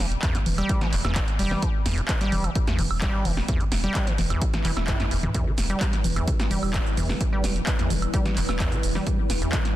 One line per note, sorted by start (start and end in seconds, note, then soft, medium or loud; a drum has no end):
0.00 0.16 E1 loud
0.12 closed hi-hat soft
0.22 0.36 E2 loud
0.22 kick loud
0.22 clap loud
0.22 closed hi-hat medium
0.35 0.39 A2 loud
0.35 snare soft
0.35 closed hi-hat medium
0.46 0.63 E1 loud
0.46 open hi-hat medium
0.46 low conga medium
0.58 0.83 G3 loud
0.58 closed hi-hat soft
0.58 high woodblock medium
0.69 kick loud
0.69 closed hi-hat medium
0.81 0.88 E3 medium
0.81 snare medium
0.81 closed hi-hat soft
0.81 low conga medium
0.92 1.01 E1 loud
0.92 clap medium
0.92 open hi-hat loud
1.05 1.21 E1 medium
1.05 1.17 E2 loud
1.05 snare medium
1.05 closed hi-hat soft
1.05 high woodblock medium
1.15 1.20 A2 loud
1.15 kick loud
1.15 clap loud
1.15 closed hi-hat medium
1.28 closed hi-hat soft
1.39 1.56 E1 medium
1.39 1.64 G3 loud
1.39 open hi-hat medium
1.51 snare medium
1.51 low conga medium
1.62 1.69 E3 medium
1.62 kick loud
1.62 closed hi-hat medium
1.86 2.02 E1 loud
1.86 1.99 E2 loud
1.86 snare medium
1.86 open hi-hat loud
1.98 2.01 A2 loud
1.98 closed hi-hat soft
2.08 kick loud
2.08 clap loud
2.08 closed hi-hat medium
2.21 2.46 G3 loud
2.21 snare soft
2.21 closed hi-hat medium
2.32 2.49 E1 medium
2.32 open hi-hat medium
2.32 low conga medium
2.44 2.50 E3 medium
2.44 closed hi-hat medium
2.44 high woodblock medium
2.55 kick loud
2.55 closed hi-hat medium
2.67 2.80 E2 loud
2.67 snare medium
2.67 closed hi-hat soft
2.79 2.87 E1 medium
2.79 2.83 A2 loud
2.79 open hi-hat medium
2.79 low conga medium
2.91 3.07 E1 medium
2.91 high woodblock medium
3.01 3.27 G3 loud
3.01 kick loud
3.01 clap loud
3.01 closed hi-hat medium
3.25 3.42 E1 loud
3.25 3.32 E3 medium
3.25 open hi-hat medium
3.25 low conga medium
3.37 snare medium
3.48 3.62 E2 loud
3.48 kick loud
3.48 closed hi-hat medium
3.60 3.64 A2 loud
3.60 closed hi-hat soft
3.72 3.88 E1 loud
3.72 snare medium
3.72 open hi-hat loud
3.84 4.09 G3 loud
3.84 closed hi-hat soft
3.95 kick loud
3.95 clap loud
3.95 closed hi-hat medium
4.07 4.13 E3 medium
4.07 snare soft
4.07 closed hi-hat medium
4.18 4.35 E1 medium
4.18 snare soft
4.18 open hi-hat medium
4.18 low conga loud
4.30 4.43 E2 loud
4.30 closed hi-hat medium
4.30 high woodblock medium
4.42 4.46 A2 loud
4.42 kick loud
4.42 closed hi-hat medium
4.42 swell medium
4.54 snare medium
4.54 closed hi-hat soft
4.54 low conga medium
4.64 4.73 E1 medium
4.64 4.71 E3 loud
4.64 clap medium
4.64 open hi-hat loud
4.64 low conga medium
4.77 4.93 E1 medium
4.77 snare medium
4.77 closed hi-hat soft
4.77 high woodblock medium
4.87 4.98 G2 loud
4.87 kick loud
4.87 snare medium
4.87 clap loud
4.87 closed hi-hat medium
5.00 5.06 F#2 loud
5.00 snare medium
5.00 closed hi-hat soft
5.11 5.28 E1 medium
5.11 5.18 E2 medium
5.11 open hi-hat medium
5.23 5.30 E2 loud
5.23 closed hi-hat soft
5.23 mid tom medium
5.23 low conga loud
5.34 5.48 E2 loud
5.34 9.76 G3 medium
5.34 9.76 B3 medium
5.34 9.76 E4 medium
5.34 9.76 B4 medium
5.34 kick loud
5.34 closed hi-hat medium
5.34 shaker soft
5.47 5.53 E3 medium
5.58 5.74 E1 loud
5.58 snare medium
5.58 open hi-hat loud
5.58 shaker medium
5.70 5.95 G3 loud
5.70 closed hi-hat soft
5.70 shaker soft
5.81 kick loud
5.81 clap loud
5.81 closed hi-hat medium
5.81 shaker soft
5.93 5.99 E3 medium
5.93 snare soft
5.93 closed hi-hat medium
6.04 6.21 E1 medium
6.04 open hi-hat medium
6.04 low conga loud
6.04 shaker medium
6.16 6.29 E2 loud
6.16 closed hi-hat medium
6.16 high woodblock medium
6.16 shaker soft
6.28 6.34 E3 medium
6.28 kick loud
6.28 closed hi-hat medium
6.28 shaker soft
6.40 snare medium
6.40 closed hi-hat soft
6.40 shaker soft
6.51 6.59 E1 medium
6.51 6.76 G3 loud
6.51 open hi-hat loud
6.51 low conga medium
6.51 shaker medium
6.63 6.79 E1 medium
6.63 high woodblock medium
6.63 shaker soft
6.74 6.81 E3 medium
6.74 kick loud
6.74 clap loud
6.74 closed hi-hat medium
6.74 shaker soft
6.87 shaker soft
6.97 7.14 E1 loud
6.97 7.11 E2 loud
6.97 open hi-hat medium
6.97 low conga loud
6.97 shaker medium
7.09 7.16 E3 medium
7.09 snare medium
7.09 shaker soft
7.21 kick loud
7.21 closed hi-hat medium
7.21 shaker soft
7.33 7.57 G3 loud
7.44 7.61 E1 loud
7.44 snare medium
7.44 open hi-hat loud
7.44 shaker medium
7.56 7.62 E3 medium
7.56 closed hi-hat soft
7.56 shaker soft
7.67 kick loud
7.67 clap loud
7.67 closed hi-hat medium
7.67 shaker soft
7.79 7.92 E2 loud
7.79 snare soft
7.79 closed hi-hat medium
7.90 8.07 E1 medium
7.90 7.97 E3 medium
7.90 open hi-hat loud
7.90 low conga medium
7.90 shaker medium
8.02 closed hi-hat soft
8.02 high woodblock medium
8.02 shaker soft
8.14 8.38 G3 loud
8.14 kick loud
8.14 closed hi-hat medium
8.14 shaker soft
8.26 snare medium
8.26 closed hi-hat soft
8.26 low conga medium
8.26 shaker soft
8.36 8.45 E1 loud
8.36 8.43 E3 medium
8.36 clap medium
8.36 open hi-hat loud
8.36 shaker medium
8.49 8.65 E1 medium
8.49 snare medium
8.49 closed hi-hat soft
8.49 high woodblock medium
8.49 shaker soft
8.60 8.74 E2 loud
8.60 kick loud
8.60 clap loud
8.60 closed hi-hat medium
8.60 shaker soft
8.72 8.78 E3 medium
8.72 closed hi-hat soft
8.72 shaker soft
8.83 9.00 E1 loud
8.83 open hi-hat medium
8.83 shaker medium
8.95 9.20 G3 loud
8.95 snare medium
8.95 low conga medium
8.95 shaker soft
9.07 kick loud
9.07 closed hi-hat medium
9.07 shaker soft
9.19 9.25 E3 medium
9.30 9.47 E1 loud
9.30 snare medium
9.30 open hi-hat loud
9.30 shaker medium
9.42 9.55 E2 loud
9.42 closed hi-hat soft
9.42 shaker soft
9.52 9.60 E3 medium
9.52 kick loud
9.52 clap loud
9.52 closed hi-hat medium
9.52 shaker soft
9.65 snare soft
9.65 closed hi-hat medium